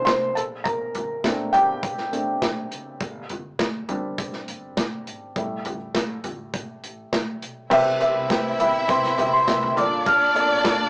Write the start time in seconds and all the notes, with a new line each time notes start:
Already playing: E3 B3 D4 B4 C5 B5 C6
0.05 C5 C6, kick, snare, closed hi-hat
0.35 A#1 A4 A5, closed hi-hat
0.64 A#4 A#5, kick, closed hi-hat
0.95 A#1, closed hi-hat, floor tom
1.24 A#1 A3 C4 D4, kick, snare, closed hi-hat
1.53 A#1 G4 G5, closed hi-hat, floor tom
1.83 kick, closed hi-hat
1.98 snare
2.12 A#1 A3 C4 D4, closed hi-hat
2.42 A#1, kick, snare, closed hi-hat
2.71 F#1, closed hi-hat
3.00 G1, kick, closed hi-hat
3.29 G1, closed hi-hat, floor tom
3.59 G1, kick, snare, closed hi-hat
3.88 G1 G3 C4 D4, closed hi-hat, floor tom
4.18 kick, closed hi-hat
4.33 snare
4.48 G1, closed hi-hat
4.77 kick, snare, closed hi-hat
5.07 G#1, closed hi-hat
5.36 A1 G3 A3 E4, kick, closed hi-hat
5.65 A1, closed hi-hat, floor tom
5.95 A1, kick, snare, closed hi-hat
6.24 A1, closed hi-hat, floor tom
6.54 kick, closed hi-hat
6.83 A1, closed hi-hat
7.13 A1, kick, snare, closed hi-hat
7.42 B1, closed hi-hat
7.70 C2 C3 C4 E4 G4 B4 E5, kick, crash
8.00 C4 G4 B4 E5, closed hi-hat
8.15 C2
8.29 C2 C4 G4 B4 G5, kick, snare, closed hi-hat
8.59 B1 C4 G4 B4 E5 B5, closed hi-hat, floor tom
8.88 C2 C4 G4 B4 G5 C6, kick, closed hi-hat
9.04 snare
9.17 C2 C4 G4 B4 E5, closed hi-hat, floor tom
9.33 C6
9.46 C2 C4 G4 B4 E5, kick, snare, closed hi-hat
9.63 floor tom
9.76 A#1 A#2 A#3 D4 F4 A4 D5 D6, closed hi-hat, floor tom
10.06 F6, kick, closed hi-hat
10.34 A#3 F4 A4 D5, closed hi-hat
10.50 A#1
10.64 A#1 A#3 F4 A4 D5, kick, snare, closed hi-hat